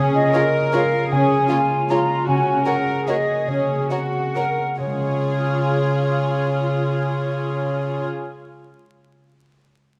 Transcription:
Already playing: harp C#3, viola section C#4, cello section G#4
0.15 harp F4, flute D#5
0.33 violin section F4 G#4 C#5, harp F#4, cello section A#4
0.54 harp F4
0.73 harp G#3, violin section F4 G#4 C#5, flute F5
0.93 harp F4
1.11 harp C#3, viola section C#4, cello section G#4, flute G#5
1.30 harp G#3
1.49 harp A#3, violin section F4 G#4 C#5, cello section F4
1.70 harp F4
1.90 harp G#3, violin section F4 G#4 C#5, cello section F4, flute A#5
2.09 harp F4
2.28 harp C#3, viola section C#4, cello section F#4, flute G#5
2.46 harp F#4
2.66 violin section F#4 A#4 C#5, harp G#4, cello section A#4, flute F#5
2.87 harp F#4
3.07 harp A#3, violin section F#4 A#4 C#5, cello section G#4, flute D#5
3.28 harp F#4
3.47 harp C#3, viola section C#4, flute C#5
3.68 harp A#3
3.90 harp C4, cello section F#4, violin section F#4 A#4 C#5, flute F#5
4.13 harp F#4
4.35 harp A#3, violin section F#4 A#4 C#5, cello section A#4
4.58 harp F#4
4.79 cello section C#3, harp C#3, viola section F4, violin section G#4, flute C#5
4.87 harp G#3
4.94 harp C#4
5.01 harp F4
5.07 harp C#5
5.15 harp F5

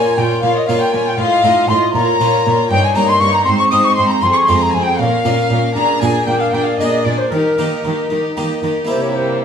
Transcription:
Already playing: harpsichord A#2 A#3 C#4 F4, viola section F4, violin section C#5 G#5, flute G#5
0.17 cello section A#2, harpsichord A#2, viola section F4, violin section C#5 G5, flute G5
0.43 harpsichord A#2, cello section A#2, viola section F4, violin section C#5 F5, flute F5
0.55 violin section D#5, flute D#5
0.67 cello section A#2, harpsichord A#2 A#3 C#4 F4, viola section F4, violin section C#5 F5, flute F5
0.79 violin section G5, flute G5
0.93 cello section A#2, harpsichord A#2, viola section F4, violin section C#5 G#5, flute G#5
1.06 violin section G5, flute G5
1.18 cello section A2, harpsichord A2, viola section F4, flute F5, violin section F5
1.22 violin section D#5
1.43 cello section A2, harpsichord A2 C4 D#4 F4, viola section F4, violin section D#5
1.69 cello section A2, harpsichord A2, viola section F4, violin section D#5 C6, flute C6
1.94 cello section A#2, harpsichord A#2, viola section F4, violin section C#5 A#5, flute A#5
2.20 cello section A#2, harpsichord A#2 A#3 C#4 F4, viola section F4, violin section C#5
2.46 cello section A#2, harpsichord A#2, viola section F4, violin section C#5
2.70 cello section G2, harpsichord G2, viola section D#4, violin section C#5 G5, flute G5
2.84 violin section G#5, flute G#5
2.95 harpsichord G2 A#3 C#4 D#4, cello section G2, viola section D#4, violin section C#5 A#5, flute A#5
3.08 violin section C6, flute C6
3.20 cello section G2, harpsichord G2, viola section D#4, violin section C#5 C#6, flute C#6
3.33 flute A#5, violin section A#5
3.45 harpsichord G#2, cello section G#2, viola section C4, violin section C5 C6, flute C6
3.59 violin section C#6, flute C#6
3.71 cello section G#2, harpsichord G#2 G#3 C4 D#4, viola section C4, violin section C5 D#6, flute D#6
3.84 violin section C#6, flute C#6
3.95 cello section G#2, harpsichord G#2, viola section C4, violin section C5 C6, flute C6
4.08 violin section A#5, flute A#5
4.20 cello section F2, harpsichord F2, viola section C4, violin section G#4 C6, flute C6
4.33 violin section C#6, flute C#6
4.46 harpsichord F2 G#3 C4 F4, cello section F2, viola section C4, violin section C6, flute C6
4.50 violin section G#4
4.57 violin section A#5
4.63 flute A#5
4.70 harpsichord F2, violin section G#5
4.74 cello section F2, viola section C4, violin section G#4, flute G#5
4.83 violin section G5, flute G5
4.97 harpsichord A#2, cello section A#2, viola section C#4, violin section A#4 F5, flute F5
5.24 cello section A#2, harpsichord A#2 A#3 C#4 F4, viola section C#4, violin section A#4
5.50 cello section A#2, harpsichord A#2, viola section C#4, violin section A#4
5.74 cello section A#2, harpsichord A#2, viola section D4, violin section G#4 A#5, flute A#5
6.00 cello section A#2, harpsichord A#2 A#3 D4 G#4, viola section D4, violin section G#4 G#5, flute G#5
6.24 cello section A#2, harpsichord A#2, viola section D4, violin section G#4 G5, flute G5
6.39 violin section F5, flute F5
6.51 cello section A#2, harpsichord A#2, viola section D4, violin section G#4 G5, flute G5
6.63 violin section F5, flute F5
6.76 cello section A#2, viola section D4, violin section G#4 D#5, flute D#5
6.81 harpsichord A#2 A#3 D4 G#4
7.04 cello section A#2, harpsichord A#2, viola section D4, violin section G#4 D5, flute D5
7.18 flute C5, violin section C5
7.30 cello section D#3, harpsichord D#3, viola section D#4, violin section G4 A#4, flute A#4
7.58 harpsichord D#3 A#3 D#4 G4, cello section D#3, viola section D#4, violin section G4
7.84 harpsichord D#3, cello section D#3, viola section D#4, violin section G4
8.10 harpsichord D#3, cello section D#3, viola section D#4, violin section G4
8.37 cello section D#3, harpsichord D#3 A#3 D#4 G4, viola section D#4, violin section G4
8.63 cello section D#3, harpsichord D#3, viola section D#4, violin section G4
8.85 harpsichord A#3 E4 G4
8.89 cello section C3, harpsichord C3, viola section G3, violin section A#3 E4, flute C5
9.02 flute C#5
9.16 flute C5
9.41 flute E5

